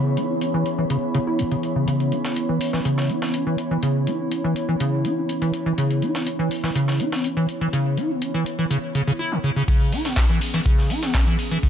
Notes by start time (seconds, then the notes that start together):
Already playing: C#3 E3 B3 C#4 E4 G#4 C#5 B5
0.17 E4, closed hi-hat
0.30 B3
0.41 C#4, closed hi-hat
0.54 E3
0.66 closed hi-hat
0.78 E3
0.90 C#3, closed hi-hat
1.15 C#3, closed hi-hat
1.27 E4
1.39 C#2, closed hi-hat
1.51 C#3, closed hi-hat
1.63 closed hi-hat
1.76 C#3
1.88 C#3 E4, closed hi-hat
2.00 closed hi-hat
2.12 E4, closed hi-hat
2.25 B3, snare
2.36 C#4, closed hi-hat
2.49 E3
2.61 open hi-hat
2.73 E3, snare
2.85 C#3, closed hi-hat
2.98 snare
3.10 E4, closed hi-hat
3.22 B3, snare
3.34 C#4, closed hi-hat
3.47 E3
3.58 closed hi-hat
3.71 E3
3.83 C#3, closed hi-hat
4.07 E4, closed hi-hat
4.20 B3
4.32 C#4, closed hi-hat
4.44 E3
4.56 closed hi-hat
4.69 E3
4.80 C#3, closed hi-hat
5.05 E4, closed hi-hat
5.17 B3
5.29 C#4, closed hi-hat
5.42 E3, closed hi-hat
5.54 closed hi-hat
5.66 E3
5.78 C#3, closed hi-hat
5.90 closed hi-hat
6.02 E4, closed hi-hat
6.15 B3, snare
6.27 C#4, closed hi-hat
6.39 E3
6.51 open hi-hat
6.64 E3, snare
6.75 C#3, closed hi-hat
6.88 snare
7.00 E4, closed hi-hat
7.12 B3, snare
7.24 C#4, closed hi-hat
7.37 E3
7.49 closed hi-hat
7.61 E3
7.73 C#3, closed hi-hat
7.97 E4, closed hi-hat
8.10 B3
8.22 C#4, closed hi-hat
8.34 E3
8.46 closed hi-hat
8.59 E3
8.70 C#3, closed hi-hat
8.95 C#3, closed hi-hat
9.08 C#3
9.19 E4
9.32 C#3
9.44 C#3
9.56 C#3
9.68 C#3 E3 B3 C#4 G#4, kick, closed hi-hat, ride, crash
9.81 closed hi-hat
9.92 E4, closed hi-hat, open hi-hat, ride
10.05 B3, snare, closed hi-hat
10.17 C#4, kick, snare, clap, closed hi-hat, ride
10.29 E3
10.41 open hi-hat, ride
10.54 E3, snare, closed hi-hat
10.66 C#3, kick, closed hi-hat, ride
10.78 snare
10.90 E4, closed hi-hat, open hi-hat, ride
11.03 B3, snare, closed hi-hat
11.14 C#4, kick, snare, clap, closed hi-hat, ride
11.27 E3
11.39 closed hi-hat, open hi-hat, ride
11.51 E3, closed hi-hat
11.63 C#3, kick, closed hi-hat, ride